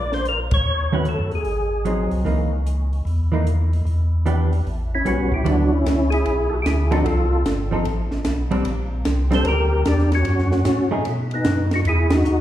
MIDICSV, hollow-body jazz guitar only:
0, 0, Header, 1, 2, 480
1, 0, Start_track
1, 0, Tempo, 399467
1, 797, Time_signature, 4, 2, 24, 8
1, 14908, End_track
2, 0, Start_track
2, 0, Title_t, "Hollow-body jazz guitar"
2, 0, Program_c, 0, 26
2, 1110, Note_on_c, 0, 51, 56
2, 1112, Note_on_c, 0, 57, 55
2, 1119, Note_on_c, 0, 61, 61
2, 1123, Note_on_c, 0, 66, 61
2, 1260, Note_off_c, 0, 51, 0
2, 1261, Note_off_c, 0, 57, 0
2, 1265, Note_off_c, 0, 61, 0
2, 1267, Note_off_c, 0, 66, 0
2, 2223, Note_on_c, 0, 54, 41
2, 2234, Note_on_c, 0, 60, 41
2, 2243, Note_on_c, 0, 63, 43
2, 2694, Note_off_c, 0, 54, 0
2, 2698, Note_on_c, 0, 52, 43
2, 2702, Note_off_c, 0, 60, 0
2, 2703, Note_off_c, 0, 63, 0
2, 2707, Note_on_c, 0, 58, 52
2, 2717, Note_on_c, 0, 63, 50
2, 2992, Note_off_c, 0, 52, 0
2, 2997, Note_off_c, 0, 58, 0
2, 3002, Note_off_c, 0, 63, 0
2, 3986, Note_on_c, 0, 52, 59
2, 4001, Note_on_c, 0, 58, 58
2, 4008, Note_on_c, 0, 63, 67
2, 4140, Note_off_c, 0, 52, 0
2, 4147, Note_off_c, 0, 58, 0
2, 4151, Note_off_c, 0, 63, 0
2, 5115, Note_on_c, 0, 52, 55
2, 5120, Note_on_c, 0, 59, 60
2, 5122, Note_on_c, 0, 62, 53
2, 5129, Note_on_c, 0, 67, 58
2, 5401, Note_off_c, 0, 52, 0
2, 5404, Note_off_c, 0, 59, 0
2, 5405, Note_off_c, 0, 62, 0
2, 5409, Note_off_c, 0, 67, 0
2, 6070, Note_on_c, 0, 55, 49
2, 6082, Note_on_c, 0, 59, 53
2, 6087, Note_on_c, 0, 61, 51
2, 6359, Note_off_c, 0, 55, 0
2, 6365, Note_off_c, 0, 59, 0
2, 6368, Note_off_c, 0, 61, 0
2, 6542, Note_on_c, 0, 50, 62
2, 6546, Note_on_c, 0, 54, 63
2, 6553, Note_on_c, 0, 59, 54
2, 6557, Note_on_c, 0, 64, 63
2, 6835, Note_off_c, 0, 50, 0
2, 6837, Note_off_c, 0, 54, 0
2, 6841, Note_off_c, 0, 59, 0
2, 6842, Note_off_c, 0, 64, 0
2, 8304, Note_on_c, 0, 53, 68
2, 8307, Note_on_c, 0, 60, 72
2, 8310, Note_on_c, 0, 63, 68
2, 8314, Note_on_c, 0, 69, 76
2, 8459, Note_off_c, 0, 53, 0
2, 8460, Note_off_c, 0, 60, 0
2, 8462, Note_off_c, 0, 63, 0
2, 8464, Note_off_c, 0, 69, 0
2, 9267, Note_on_c, 0, 53, 58
2, 9279, Note_on_c, 0, 60, 63
2, 9283, Note_on_c, 0, 63, 56
2, 9290, Note_on_c, 0, 69, 61
2, 9420, Note_off_c, 0, 53, 0
2, 9426, Note_off_c, 0, 60, 0
2, 9428, Note_off_c, 0, 63, 0
2, 9431, Note_off_c, 0, 69, 0
2, 10225, Note_on_c, 0, 55, 69
2, 10226, Note_on_c, 0, 60, 75
2, 10235, Note_on_c, 0, 62, 78
2, 10379, Note_off_c, 0, 55, 0
2, 10379, Note_off_c, 0, 60, 0
2, 10384, Note_off_c, 0, 62, 0
2, 11183, Note_on_c, 0, 55, 67
2, 11188, Note_on_c, 0, 60, 62
2, 11203, Note_on_c, 0, 62, 74
2, 11337, Note_off_c, 0, 55, 0
2, 11340, Note_off_c, 0, 60, 0
2, 11348, Note_off_c, 0, 62, 0
2, 13110, Note_on_c, 0, 57, 63
2, 13117, Note_on_c, 0, 63, 67
2, 13124, Note_on_c, 0, 68, 68
2, 13260, Note_off_c, 0, 57, 0
2, 13264, Note_off_c, 0, 63, 0
2, 13267, Note_off_c, 0, 68, 0
2, 14908, End_track
0, 0, End_of_file